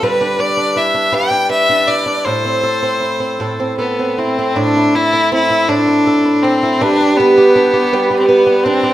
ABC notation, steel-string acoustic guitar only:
X:1
M:3/4
L:1/16
Q:1/4=81
K:Am
V:1 name="Steel-string acoustic guitar"
[G,B] D B D E D [G,B] D B D E D | [A,,A] C A C E C [A,,A] C A C E C | [A,,A] E A E C E [A,,A] E A E C E | [G,B] G B G D G [G,B] G B G D G |]